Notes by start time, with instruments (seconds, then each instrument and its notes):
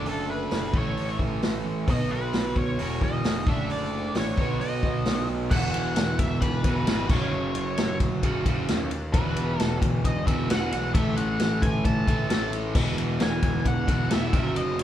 Already playing: overdriven electric guitar D3 A3 D4
0.06 picked electric bass F#1, lead electric guitar A4, open hi-hat
0.31 lead electric guitar B4
0.51 picked electric bass F#1, snare, open hi-hat
0.74 picked electric bass A1, overdriven electric guitar A2 E3 A3, lead electric guitar C#5, kick
0.97 picked electric bass A1, open hi-hat
1.19 picked electric bass A1, kick
1.42 picked electric bass A1, snare, open hi-hat
1.66 picked electric bass A1
1.88 picked electric bass B1, overdriven electric guitar B2 F#3 B3, lead electric guitar D#5, kick, open hi-hat
2.11 picked electric bass B1, lead electric guitar B4
2.33 picked electric bass B1, snare, open hi-hat
2.56 picked electric bass B1, lead electric guitar C#5, kick
2.79 picked electric bass E1, overdriven electric guitar E2 B2 E3, open hi-hat
3.01 picked electric bass E1, lead electric guitar D#5, kick
3.24 picked electric bass F1, snare, open hi-hat
3.46 picked electric bass F#1, overdriven electric guitar D3 A3 D4, lead electric guitar E5, kick
3.70 picked electric bass F#1, lead electric guitar D5, open hi-hat
4.14 picked electric bass A1, lead electric guitar C#5, snare, open hi-hat
4.37 picked electric bass B1, overdriven electric guitar B2 F#3 B3, kick
4.60 picked electric bass B1, lead electric guitar D#5, open hi-hat
4.83 picked electric bass B1, kick
5.05 picked electric bass B1, snare, open hi-hat
5.29 picked electric bass B1
5.50 picked electric bass E1, overdriven electric guitar E2 B2 E3, lead electric guitar F#5, kick, crash
5.71 picked electric bass E1, lead electric guitar F#5, ride
5.96 picked electric bass E1, snare, ride
6.19 picked electric bass E1, lead electric guitar E5, kick, ride
6.42 picked electric bass E1, lead electric guitar B4, kick, ride
6.64 picked electric bass E1, overdriven electric guitar E2 B2 E3, kick, ride
6.86 picked electric bass G#1, overdriven electric guitar E2 B2 E3, snare, ride
7.09 picked electric bass F#1, overdriven electric guitar F#2 C#3 F#3, lead electric guitar C#5, kick, crash
7.33 picked electric bass F#1
7.55 picked electric bass F#1, ride
7.77 picked electric bass F#1, snare, ride
8.00 kick, ride
8.23 picked electric bass F#1, overdriven electric guitar F#2 C#3 F#3, kick, ride
8.46 picked electric bass F#1, overdriven electric guitar F#2 C#3 F#3, kick, ride
8.68 picked electric bass D#2, snare, ride
8.91 ride
9.13 picked electric bass E1, overdriven electric guitar E2 B2 E3, lead electric guitar B4, kick, ride
9.36 picked electric bass E1, ride
9.59 picked electric bass E1, lead electric guitar A4, snare, ride
9.82 picked electric bass E1, kick, ride
10.04 picked electric bass E1, lead electric guitar D#5, kick, ride
10.27 picked electric bass E1, overdriven electric guitar E2 B2 E3, lead electric guitar E5, kick, ride
10.49 picked electric bass E1, overdriven electric guitar E2 B2 E3, lead electric guitar F#5, snare, ride
10.72 picked electric bass B1, lead electric guitar F#5, ride
10.94 picked electric bass A1, overdriven electric guitar A2 E3 A3, lead electric guitar E5, kick, ride
11.17 picked electric bass A1, lead electric guitar F#5, ride
11.39 picked electric bass A1, snare, ride
11.62 lead electric guitar G#5, kick, ride
11.85 picked electric bass A1, lead electric guitar A5, kick, ride
12.08 picked electric bass A1, overdriven electric guitar A2 E3 A3, kick, ride
12.30 picked electric bass A1, overdriven electric guitar A2 E3 A3, snare, ride
12.53 ride
12.75 picked electric bass E1, overdriven electric guitar E2 B2 E3, kick, crash
12.98 picked electric bass E1, ride
13.20 picked electric bass E1, lead electric guitar G#5, snare, ride
13.42 picked electric bass E1, kick, ride
13.65 picked electric bass E1, lead electric guitar F#5, kick, ride
13.87 picked electric bass E1, overdriven electric guitar E2 B2 E3, kick, ride
14.09 picked electric bass E1, overdriven electric guitar E2 B2 E3, lead electric guitar E5, snare, ride
14.32 picked electric bass F#1, overdriven electric guitar F#2 C#3 F#3, kick, ride
14.56 picked electric bass F#1, lead electric guitar D#5, ride
14.79 picked electric bass F#1, ride